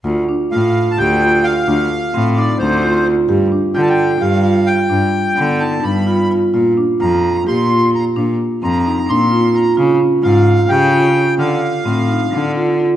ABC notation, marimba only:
X:1
M:7/8
L:1/8
Q:1/4=130
K:Dphr
V:1 name="Marimba"
F D F2 G F2 | D2 C E D F F | G D F2 G F2 | D2 =B, E D F F |
F D F2 G F2 | D2 C E D F F | ^E ^C E2 G E2 | D2 C E D F F |]